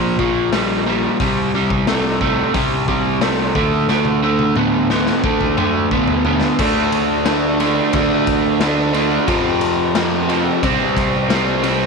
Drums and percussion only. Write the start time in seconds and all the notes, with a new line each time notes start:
0.19 kick
0.53 snare, open hi-hat
1.20 kick, open hi-hat
1.70 kick
1.87 snare, open hi-hat
2.21 kick
2.54 kick, open hi-hat
2.88 kick
3.21 snare, open hi-hat
3.55 kick
3.89 snare
4.05 high tom
4.39 high tom
4.56 mid tom
4.90 snare
5.07 snare
5.24 kick
5.41 kick
5.58 mid tom
5.91 kick
6.08 floor tom
6.25 floor tom
6.41 snare
6.59 kick, crash
6.92 ride
7.26 snare, ride
7.60 ride
7.93 kick, ride
8.27 kick, ride
8.61 snare, ride
8.94 ride
9.28 kick, ride
9.61 ride
9.95 snare, ride
10.29 ride
10.63 kick, ride
10.97 kick, ride
11.30 snare, ride
11.64 ride